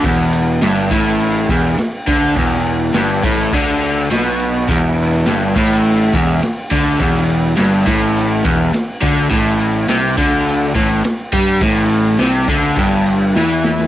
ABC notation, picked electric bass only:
X:1
M:4/4
L:1/8
Q:1/4=104
K:A
V:1 name="Picked electric bass" clef=bass
E,,,2 =G,,, A,,,2 E,,, z D,, | E,,,2 =G,,, A,,, D,,2 B,,,2 | E,,,2 =G,,, A,,,2 E,,, z D,, | E,,,2 =G,,, A,,,2 E,,, z D,, |
A,,,2 =C,, D,,2 A,,, z =G,, | A,,,2 =C,, D,, =G,,,2 E,,2 |]